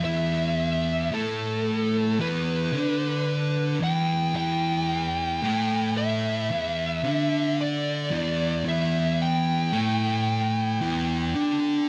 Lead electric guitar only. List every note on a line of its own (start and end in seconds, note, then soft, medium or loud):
0.04 1.15 E5 medium
1.14 2.16 A4 medium
2.21 3.77 B4 medium
3.84 4.35 G5 medium
4.37 5.93 G5 loud
5.98 7.54 E5 loud
7.61 8.63 D5 medium
8.69 9.22 E5 loud
9.22 11.89 G5 loud